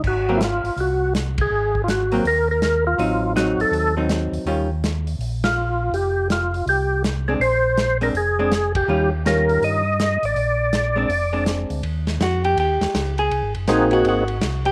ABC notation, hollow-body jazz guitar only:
X:1
M:4/4
L:1/8
Q:"Swing" 1/4=163
K:Ab
V:1 name="Hollow-body jazz guitar"
z [_G,B,C] z6 | z3 [_G,B,C] z4 | [^F,CE]2 [F,CE]3 [F,CE]3 | [E,G,DF] z6 z |
z6 z [A,C=D] | z3 [A,C=D] z [A,CD] z2 | [E,G,DF] z [E,G,DF]3 z3 | z3 [A,C=D] z [A,CD]3 |
z2 _G =G G3 A- | A z E _G G3 =G |]